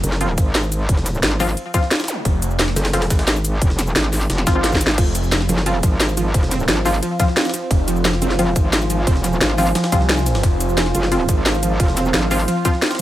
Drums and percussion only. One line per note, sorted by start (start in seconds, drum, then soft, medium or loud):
0.04 closed hi-hat medium
0.04 ride medium
0.04 cabasa medium
0.12 snare soft
0.21 closed hi-hat medium
0.21 ride medium
0.38 kick loud
0.38 closed hi-hat medium
0.38 ride medium
0.38 cabasa medium
0.55 snare loud
0.55 closed hi-hat medium
0.55 ride medium
0.63 cabasa soft
0.72 closed hi-hat medium
0.72 ride medium
0.72 cabasa medium
0.89 kick loud
0.89 closed hi-hat medium
0.89 ride medium
0.97 snare medium
1.06 snare medium
1.06 closed hi-hat medium
1.06 ride medium
1.06 cabasa medium
1.14 cabasa soft
1.23 snare loud
1.23 closed hi-hat medium
1.23 ride medium
1.32 snare soft
1.40 snare soft
1.40 open hi-hat medium
1.40 ride medium
1.40 cabasa medium
1.49 snare soft
1.57 closed hi-hat medium
1.57 ride medium
1.74 kick loud
1.74 snare soft
1.74 closed hi-hat medium
1.74 ride medium
1.74 cabasa medium
1.83 snare medium
1.91 snare loud
1.91 snare medium
1.91 closed hi-hat medium
1.91 ride medium
1.95 snare medium
1.95 ride medium
2.00 snare medium
2.00 ride medium
2.00 cabasa soft
2.04 snare medium
2.04 ride medium
2.08 snare soft
2.08 closed hi-hat loud
2.08 ride medium
2.08 cabasa medium
2.25 kick loud
2.25 closed hi-hat medium
2.25 ride medium
2.42 closed hi-hat medium
2.42 ride medium
2.42 cabasa medium
2.51 cabasa soft
2.59 snare loud
2.59 closed hi-hat medium
2.59 ride medium
2.68 snare medium
2.68 snare soft
2.76 snare loud
2.76 closed hi-hat medium
2.76 ride medium
2.76 cabasa medium
2.85 snare loud
2.85 snare soft
2.85 ride medium
2.93 snare loud
2.93 closed hi-hat medium
2.93 ride medium
3.02 snare loud
3.02 ride medium
3.10 kick loud
3.10 snare loud
3.10 closed hi-hat medium
3.10 ride medium
3.10 cabasa medium
3.19 snare loud
3.19 ride medium
3.27 snare loud
3.27 closed hi-hat medium
3.27 ride medium
3.36 cabasa soft
3.45 closed hi-hat loud
3.45 ride medium
3.45 cabasa medium
3.62 kick loud
3.62 closed hi-hat medium
3.62 ride medium
3.70 snare medium
3.79 snare medium
3.79 closed hi-hat medium
3.79 ride medium
3.79 cabasa medium
3.87 cabasa soft
3.96 snare loud
3.96 closed hi-hat medium
3.96 ride medium
4.04 snare soft
4.13 snare soft
4.13 open hi-hat medium
4.13 ride medium
4.13 cabasa medium
4.21 snare soft
4.30 snare loud
4.30 closed hi-hat medium
4.30 ride medium
4.38 snare medium
4.47 kick loud
4.47 snare loud
4.47 closed hi-hat loud
4.47 ride medium
4.47 cabasa medium
4.64 snare medium
4.64 snare loud
4.64 closed hi-hat medium
4.64 ride medium
4.72 kick medium
4.72 snare medium
4.72 cabasa soft
4.75 snare medium
4.81 snare soft
4.81 closed hi-hat loud
4.81 ride medium
4.81 cabasa medium
4.87 snare loud
4.98 kick loud
4.98 closed hi-hat medium
4.98 crash medium
4.98 ride medium
5.15 closed hi-hat loud
5.15 ride medium
5.15 cabasa medium
5.24 cabasa soft
5.32 snare loud
5.32 closed hi-hat medium
5.32 ride medium
5.41 snare medium
5.41 snare soft
5.49 closed hi-hat loud
5.49 ride medium
5.49 cabasa medium
5.58 snare soft
5.66 closed hi-hat medium
5.66 ride medium
5.83 kick loud
5.83 closed hi-hat loud
5.83 ride soft
5.83 ride medium
5.83 cabasa medium
6.00 snare loud
6.00 closed hi-hat medium
6.00 ride medium
6.09 cabasa soft
6.17 closed hi-hat loud
6.17 ride medium
6.17 cabasa medium
6.34 kick loud
6.34 closed hi-hat medium
6.34 ride medium
6.43 snare medium
6.51 snare medium
6.51 closed hi-hat medium
6.51 ride medium
6.51 cabasa medium
6.60 cabasa soft
6.68 snare loud
6.68 closed hi-hat medium
6.68 ride medium
6.77 snare soft
6.85 snare soft
6.85 open hi-hat medium
6.85 ride medium
6.85 cabasa medium
6.94 snare soft
7.03 closed hi-hat medium
7.03 ride medium
7.20 kick loud
7.20 snare soft
7.20 closed hi-hat medium
7.20 ride medium
7.20 cabasa medium
7.28 snare soft
7.37 snare loud
7.37 snare medium
7.37 closed hi-hat medium
7.37 ride medium
7.41 snare medium
7.41 ride medium
7.45 snare medium
7.45 ride medium
7.45 cabasa soft
7.49 snare medium
7.49 ride medium
7.54 snare soft
7.54 closed hi-hat loud
7.54 ride medium
7.54 cabasa medium
7.71 kick loud
7.71 closed hi-hat medium
7.71 ride medium
7.88 closed hi-hat medium
7.88 ride medium
7.88 cabasa medium
7.96 cabasa soft
8.05 snare loud
8.05 closed hi-hat medium
8.05 ride medium
8.13 snare medium
8.13 snare soft
8.22 closed hi-hat medium
8.22 ride medium
8.22 cabasa medium
8.30 snare soft
8.39 closed hi-hat medium
8.39 ride medium
8.56 kick loud
8.56 closed hi-hat medium
8.56 ride medium
8.56 cabasa medium
8.73 snare loud
8.73 closed hi-hat medium
8.73 ride medium
8.81 cabasa soft
8.90 closed hi-hat loud
8.90 ride medium
8.90 cabasa medium
9.07 kick loud
9.07 closed hi-hat medium
9.07 ride medium
9.16 snare medium
9.24 snare medium
9.24 closed hi-hat medium
9.24 ride medium
9.24 cabasa medium
9.33 cabasa soft
9.41 snare loud
9.41 closed hi-hat medium
9.41 ride medium
9.50 snare soft
9.58 snare soft
9.58 open hi-hat medium
9.58 ride medium
9.58 cabasa medium
9.67 snare soft
9.75 snare loud
9.75 closed hi-hat medium
9.75 ride medium
9.84 snare loud
9.84 ride medium
9.92 kick loud
9.92 snare soft
9.92 closed hi-hat medium
9.92 ride medium
9.92 cabasa medium
10.01 snare soft
10.09 snare loud
10.09 closed hi-hat medium
10.09 ride medium
10.18 snare medium
10.18 cabasa soft
10.26 snare soft
10.26 closed hi-hat medium
10.26 ride medium
10.26 cabasa medium
10.35 snare loud
10.35 ride medium
10.43 kick loud
10.43 closed hi-hat medium
10.43 ride medium
10.60 closed hi-hat medium
10.60 ride medium
10.60 cabasa medium
10.69 cabasa soft
10.78 snare loud
10.78 closed hi-hat medium
10.78 ride medium
10.86 snare medium
10.86 snare soft
10.95 closed hi-hat medium
10.95 ride medium
10.95 cabasa medium
11.03 snare soft
11.12 closed hi-hat medium
11.12 ride medium
11.29 kick loud
11.29 closed hi-hat medium
11.29 ride medium
11.29 cabasa medium
11.46 snare loud
11.46 closed hi-hat medium
11.46 ride medium
11.54 cabasa soft
11.63 closed hi-hat medium
11.63 ride medium
11.63 cabasa medium
11.80 kick loud
11.80 closed hi-hat medium
11.80 ride medium
11.88 snare medium
11.97 snare medium
11.97 closed hi-hat medium
11.97 ride medium
11.97 cabasa medium
12.05 cabasa soft
12.14 snare loud
12.14 closed hi-hat medium
12.14 ride medium
12.22 snare soft
12.31 snare soft
12.31 open hi-hat medium
12.31 ride medium
12.31 cabasa medium
12.39 snare soft
12.48 closed hi-hat medium
12.48 ride medium
12.65 kick loud
12.65 snare soft
12.65 closed hi-hat medium
12.65 ride medium
12.65 cabasa medium
12.74 snare soft
12.82 snare loud
12.82 snare medium
12.82 closed hi-hat medium
12.82 ride medium
12.86 snare medium
12.86 ride medium
12.91 snare medium
12.91 ride medium
12.91 cabasa soft
12.95 snare medium
12.95 ride medium